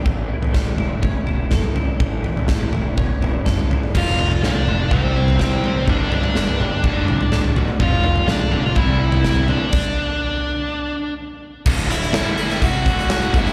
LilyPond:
<<
  \new Staff \with { instrumentName = "Lead electric guitar" } { \time 4/4 \key a \dorian \tempo 4 = 124 r1 | r1 | <f' f''>4 <d' d''>4 <c' c''>4 <c' c''>4 | <d' d''>8 <d' d''>2. r8 |
<f' f''>4 <d' d''>8. <f' f''>16 <e' e''>4. <d' d''>8~ | <d' d''>2. r4 | r8 <e' e''>4. <fis' fis''>4 <fis' fis''>8 <e' e''>8 | }
  \new Staff \with { instrumentName = "Clean electric guitar" } { \time 4/4 \key a \dorian a,8 e8 a8 e'8 cis'8 e'8 a'8 e'8 | a,8 e8 a8 e'8 cis'8 e'8 a'8 e'8 | f,8 f8 a8 f'8 c8 e'8 g'8 c''8 | g,8 g8 b8 g'8 d,8 d8 a8 fis'8 |
f,8 f8 a8 f'8 c8 e'8 g'8 c''8 | r1 | r1 | }
  \new Staff \with { instrumentName = "Distorted electric guitar" } { \clef bass \time 4/4 \key a \dorian r1 | r1 | <f, c f>8 <f, c>8 <f, c>8 <f, c>8 <c g c'>8 <c g>8 <c g>8 <c g>8 | <g, d g>8 <g, d>8 <g, d>8 <g, d>8 <d, a, d>8 <d, a,>8 <d, a,>8 <d, a,>8 |
<f, c f>8 <f, c>8 <f, c>8 <f, c>8 <c g c'>8 <c g>8 <c g>8 <c g>8 | r1 | <d, a, d>8 <d, a,>8 <g, d g>4 <c g c'>8 <d, a, d>4 <g, d g>8 | }
  \new Staff \with { instrumentName = "Picked electric bass" } { \clef bass \time 4/4 \key a \dorian a,,8. a,,8. e,,4 e,,8 fis,,16 r16 cis,16 r16 | a,,8. a,,8. e,,4 e,,8 fis,,16 r16 cis,16 r16 | f,,4 a,,16 r16 f,,8 c,16 c,4.~ c,16 | g,,8 r8 g,,16 r16 g,,16 r16 d,,16 fis,,16 c,16 r16 d,,8 d,,16 r16 |
f,,4 a,,16 r16 d,,8 c,16 c,4.~ c,16 | r1 | d,,8 d,,8 g,,4 c,8 d,,4 g,,8 | }
  \new DrumStaff \with { instrumentName = "Drums" } \drummode { \time 4/4 <bd tomfh>8. tomfh16 <bd sn>16 tomfh16 <tomfh toml>8 <bd tomfh>8 tomfh8 <bd sn toml>16 tomfh16 tomfh8 | <bd tomfh>8 tomfh16 tomfh16 <bd sn>16 tomfh16 <tomfh toml>8 <bd tomfh>8 <tomfh toml>8 <bd sn toml>16 tomfh16 tomfh16 toml16 | <cymc bd tomfh>8 tomfh16 tomfh16 sn16 tomfh16 toml8 <bd tomfh>8. tomfh16 <bd sn tomfh>16 tomfh16 tomfh8 | <bd tomfh>8 tomfh16 tomfh16 sn16 tomfh16 toml8 <bd tomfh toml>8 toml16 tomfh16 <sn tomfh>16 tomfh16 tomfh16 toml16 |
<bd tomfh>8 tomfh16 tomfh16 sn16 tomfh16 toml8 <bd tomfh>8. tomfh16 <bd sn tomfh>16 tomfh16 tomfh8 | <cymc bd>4 r4 r4 r4 | <cymc bd>16 hh16 hh16 hh16 <hh sn>16 hh16 hh16 <hh sn>16 <hh bd>8 <hh bd>16 hh16 <hh sn>16 hh16 <hh bd>16 hh16 | }
>>